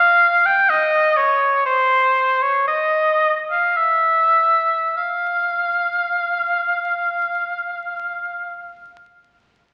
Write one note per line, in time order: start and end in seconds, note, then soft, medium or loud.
0.00 0.47 F5 loud
0.46 0.71 G5 loud
0.70 1.18 D#5 loud
1.17 1.65 C#5 loud
1.66 2.43 C5 loud
2.42 2.67 C#5 medium
2.68 3.33 D#5 loud
3.50 3.78 F5 medium
3.77 4.96 E5 medium
4.97 8.83 F5 medium